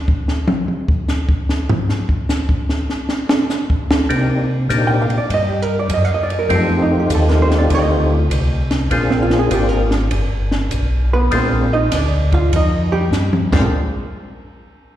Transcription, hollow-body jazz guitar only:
0, 0, Header, 1, 2, 480
1, 0, Start_track
1, 0, Tempo, 601805
1, 1348, Time_signature, 4, 2, 24, 8
1, 11935, End_track
2, 0, Start_track
2, 0, Title_t, "Hollow-body jazz guitar"
2, 0, Program_c, 0, 26
2, 3886, Note_on_c, 0, 79, 101
2, 3998, Note_off_c, 0, 79, 0
2, 4001, Note_on_c, 0, 77, 91
2, 4111, Note_off_c, 0, 77, 0
2, 4128, Note_on_c, 0, 74, 87
2, 4215, Note_off_c, 0, 74, 0
2, 4259, Note_on_c, 0, 75, 108
2, 4380, Note_on_c, 0, 67, 57
2, 4399, Note_off_c, 0, 75, 0
2, 4486, Note_off_c, 0, 67, 0
2, 4486, Note_on_c, 0, 70, 93
2, 4593, Note_off_c, 0, 70, 0
2, 4622, Note_on_c, 0, 74, 75
2, 4702, Note_off_c, 0, 74, 0
2, 4737, Note_on_c, 0, 75, 71
2, 4823, Note_off_c, 0, 75, 0
2, 4823, Note_on_c, 0, 77, 85
2, 4870, Note_off_c, 0, 77, 0
2, 4900, Note_on_c, 0, 75, 88
2, 4972, Note_on_c, 0, 74, 92
2, 5039, Note_off_c, 0, 75, 0
2, 5076, Note_off_c, 0, 74, 0
2, 5095, Note_on_c, 0, 70, 90
2, 5178, Note_off_c, 0, 70, 0
2, 5225, Note_on_c, 0, 69, 82
2, 5338, Note_on_c, 0, 60, 57
2, 5362, Note_off_c, 0, 69, 0
2, 5440, Note_on_c, 0, 63, 86
2, 5498, Note_off_c, 0, 60, 0
2, 5550, Note_off_c, 0, 63, 0
2, 5580, Note_on_c, 0, 67, 81
2, 5661, Note_off_c, 0, 67, 0
2, 5701, Note_on_c, 0, 69, 80
2, 5815, Note_off_c, 0, 69, 0
2, 5815, Note_on_c, 0, 70, 89
2, 5920, Note_on_c, 0, 72, 88
2, 5976, Note_off_c, 0, 70, 0
2, 6029, Note_off_c, 0, 72, 0
2, 6050, Note_on_c, 0, 74, 93
2, 6135, Note_off_c, 0, 74, 0
2, 6177, Note_on_c, 0, 75, 94
2, 6641, Note_off_c, 0, 75, 0
2, 7262, Note_on_c, 0, 60, 86
2, 7357, Note_on_c, 0, 65, 98
2, 7419, Note_off_c, 0, 60, 0
2, 7467, Note_off_c, 0, 65, 0
2, 7489, Note_on_c, 0, 68, 91
2, 7574, Note_off_c, 0, 68, 0
2, 7604, Note_on_c, 0, 67, 82
2, 7726, Note_off_c, 0, 67, 0
2, 7726, Note_on_c, 0, 70, 93
2, 7828, Note_off_c, 0, 70, 0
2, 8880, Note_on_c, 0, 71, 94
2, 8881, Note_on_c, 0, 59, 74
2, 9027, Note_off_c, 0, 71, 0
2, 9028, Note_off_c, 0, 59, 0
2, 9051, Note_on_c, 0, 72, 75
2, 9055, Note_on_c, 0, 60, 67
2, 9349, Note_off_c, 0, 72, 0
2, 9351, Note_off_c, 0, 60, 0
2, 9357, Note_on_c, 0, 75, 112
2, 9363, Note_on_c, 0, 63, 94
2, 9506, Note_off_c, 0, 75, 0
2, 9509, Note_off_c, 0, 63, 0
2, 9532, Note_on_c, 0, 74, 93
2, 9537, Note_on_c, 0, 62, 68
2, 9830, Note_off_c, 0, 74, 0
2, 9832, Note_off_c, 0, 62, 0
2, 9838, Note_on_c, 0, 65, 87
2, 9844, Note_on_c, 0, 77, 109
2, 9988, Note_off_c, 0, 65, 0
2, 9989, Note_off_c, 0, 77, 0
2, 10016, Note_on_c, 0, 75, 92
2, 10017, Note_on_c, 0, 63, 70
2, 10306, Note_on_c, 0, 67, 110
2, 10311, Note_off_c, 0, 63, 0
2, 10312, Note_off_c, 0, 75, 0
2, 10314, Note_on_c, 0, 55, 77
2, 10402, Note_off_c, 0, 67, 0
2, 10407, Note_off_c, 0, 55, 0
2, 10786, Note_on_c, 0, 56, 73
2, 10790, Note_on_c, 0, 60, 76
2, 10794, Note_on_c, 0, 62, 72
2, 10930, Note_off_c, 0, 56, 0
2, 10932, Note_off_c, 0, 60, 0
2, 10934, Note_off_c, 0, 62, 0
2, 11935, End_track
0, 0, End_of_file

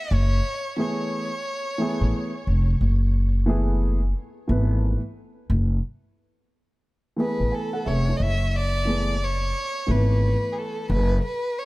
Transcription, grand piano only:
0, 0, Header, 1, 2, 480
1, 0, Start_track
1, 0, Key_signature, 3, "minor"
1, 0, Tempo, 674157
1, 75, Time_signature, 4, 2, 24, 8
1, 8295, End_track
2, 0, Start_track
2, 0, Title_t, "Grand piano"
2, 0, Program_c, 0, 0
2, 545, Note_on_c, 0, 52, 71
2, 554, Note_on_c, 0, 57, 69
2, 559, Note_on_c, 0, 59, 69
2, 567, Note_on_c, 0, 68, 81
2, 912, Note_off_c, 0, 52, 0
2, 917, Note_off_c, 0, 57, 0
2, 920, Note_off_c, 0, 59, 0
2, 924, Note_off_c, 0, 68, 0
2, 1269, Note_on_c, 0, 52, 77
2, 1275, Note_on_c, 0, 57, 71
2, 1284, Note_on_c, 0, 59, 75
2, 1292, Note_on_c, 0, 68, 82
2, 1634, Note_off_c, 0, 52, 0
2, 1638, Note_off_c, 0, 57, 0
2, 1642, Note_off_c, 0, 59, 0
2, 1646, Note_off_c, 0, 68, 0
2, 2464, Note_on_c, 0, 52, 82
2, 2473, Note_on_c, 0, 57, 70
2, 2480, Note_on_c, 0, 59, 72
2, 2489, Note_on_c, 0, 68, 89
2, 2832, Note_off_c, 0, 52, 0
2, 2836, Note_off_c, 0, 57, 0
2, 2840, Note_off_c, 0, 59, 0
2, 2844, Note_off_c, 0, 68, 0
2, 3187, Note_on_c, 0, 52, 72
2, 3195, Note_on_c, 0, 57, 63
2, 3203, Note_on_c, 0, 59, 61
2, 3214, Note_on_c, 0, 71, 81
2, 3553, Note_off_c, 0, 52, 0
2, 3557, Note_off_c, 0, 57, 0
2, 3561, Note_off_c, 0, 59, 0
2, 3567, Note_off_c, 0, 71, 0
2, 5101, Note_on_c, 0, 52, 66
2, 5111, Note_on_c, 0, 57, 63
2, 5119, Note_on_c, 0, 59, 62
2, 5126, Note_on_c, 0, 68, 76
2, 5353, Note_on_c, 0, 80, 55
2, 5358, Note_on_c, 0, 71, 50
2, 5361, Note_off_c, 0, 68, 0
2, 5499, Note_off_c, 0, 80, 0
2, 5502, Note_off_c, 0, 71, 0
2, 5505, Note_on_c, 0, 78, 70
2, 5507, Note_on_c, 0, 69, 58
2, 5589, Note_off_c, 0, 78, 0
2, 5591, Note_off_c, 0, 69, 0
2, 5591, Note_on_c, 0, 76, 69
2, 5596, Note_on_c, 0, 68, 55
2, 5738, Note_off_c, 0, 76, 0
2, 5741, Note_off_c, 0, 68, 0
2, 5751, Note_on_c, 0, 73, 64
2, 5757, Note_on_c, 0, 64, 54
2, 5794, Note_off_c, 0, 52, 0
2, 5798, Note_off_c, 0, 57, 0
2, 5802, Note_off_c, 0, 59, 0
2, 5978, Note_off_c, 0, 73, 0
2, 5981, Note_off_c, 0, 64, 0
2, 6303, Note_on_c, 0, 52, 52
2, 6314, Note_on_c, 0, 57, 56
2, 6323, Note_on_c, 0, 59, 57
2, 6331, Note_on_c, 0, 68, 63
2, 6497, Note_off_c, 0, 52, 0
2, 6502, Note_off_c, 0, 57, 0
2, 6507, Note_off_c, 0, 59, 0
2, 6511, Note_off_c, 0, 68, 0
2, 7025, Note_on_c, 0, 52, 63
2, 7033, Note_on_c, 0, 57, 61
2, 7039, Note_on_c, 0, 59, 59
2, 7051, Note_on_c, 0, 71, 72
2, 7715, Note_off_c, 0, 52, 0
2, 7719, Note_off_c, 0, 57, 0
2, 7722, Note_off_c, 0, 59, 0
2, 7728, Note_off_c, 0, 71, 0
2, 8295, End_track
0, 0, End_of_file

